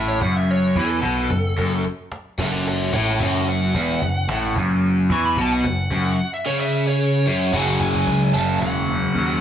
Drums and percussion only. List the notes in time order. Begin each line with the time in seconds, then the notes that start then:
0.21 cajon bass
0.75 cajon bass, cajon slap
1.03 cajon bass
1.30 cajon bass
1.58 cajon bass
2.12 cajon slap
2.39 cajon bass
2.93 cajon bass, cajon slap
3.20 cajon bass
3.75 cajon bass
4.02 cajon bass
4.29 cajon slap
4.56 cajon bass
5.10 cajon bass
5.37 cajon bass
5.64 cajon bass
5.91 cajon bass
7.54 cajon bass
7.81 cajon bass
7.94 cajon bass, cajon slap
8.35 cajon slap
8.62 cajon slap
8.89 cajon slap
9.16 cajon slap